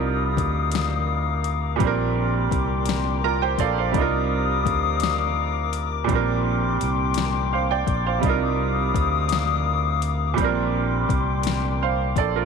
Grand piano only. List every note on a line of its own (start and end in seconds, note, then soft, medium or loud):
0.00 1.74 C3 medium
0.00 1.75 G3 medium
0.00 1.76 D4 medium
0.00 1.77 D#4 medium
0.00 1.78 F4 medium
0.00 1.79 A#4 medium
1.76 3.88 A#2 medium
1.76 3.90 G3 medium
1.81 3.91 C4 medium
1.81 3.92 D4 medium
1.87 3.23 A#4 medium
3.24 3.41 F4 medium
3.24 3.41 A#4 medium
3.24 3.40 A#5 medium
3.42 3.59 G4 medium
3.42 3.59 C5 medium
3.42 3.58 G5 medium
3.60 3.77 A4 medium
3.60 3.76 D5 medium
3.60 3.77 F5 medium
3.78 4.12 C5 medium
3.78 4.11 F5 medium
3.91 6.03 C3 medium
3.91 6.04 G3 medium
3.91 6.05 D4 medium
3.97 6.06 D#4 medium
3.97 6.07 F4 medium
4.01 6.08 A#4 medium
6.04 8.17 A#2 medium
6.04 8.18 G3 medium
6.10 8.20 C4 medium
6.10 8.21 D4 medium
6.15 8.22 A#4 medium
7.53 7.70 C5 medium
7.53 7.69 F5 medium
7.71 8.05 D5 medium
7.71 8.04 G5 medium
8.06 8.40 C5 medium
8.06 8.40 F5 medium
8.19 10.31 C3 medium
8.19 10.33 G3 medium
8.23 10.34 D4 medium
8.23 10.35 D#4 medium
8.27 10.36 F4 medium
8.27 10.37 A#4 medium
10.34 12.45 A#2 medium
10.34 12.45 G3 medium
10.39 12.45 C4 medium
10.39 12.45 D4 medium
10.44 11.46 A#4 medium
11.82 12.16 C5 medium
11.82 12.15 F5 medium
12.18 12.34 A4 medium
12.18 12.34 D5 medium
12.36 12.45 F4 medium
12.36 12.45 A#4 medium